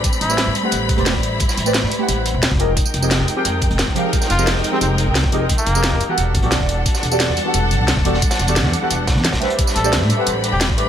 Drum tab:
HH |x-x-x-x-x-xxx-x-|x-x-x-x-x-x-x-x-|x-x-x-x-x-xxx-x-|x-x-x-x-x-x-x-x-|
TB |xxxxx-x-x-x-x---|xxxxx-x-x-x-x---|xxxxx-x-x-x-x---|xxxxx-x-x-x-x---|
SD |----o-------oo--|-o--oo------oo--|----oo------oo--|-o--oo------oo--|
BD |o---------o--o--|o------------o--|o---------o--o--|o------------o--|

HH |x-x-x-x-x-xxx-x-|x-x-x-x-x-x-x-x-|xxxxx-x-x-x-xxxx|x-x-x-x-x-x-x-x-|
TB |xxxxx-x-x-x-x---|xxxxx-x-x-x-x---|xxxxx-x-x-x-x---|xxxxx-x-x-x-x---|
SD |----o-------oo--|-o--oo------oo-o|-oo-oo----ooooo-|-o--oo------oo--|
BD |o---------o--o--|o------------o--|o---------o--o--|o------------o--|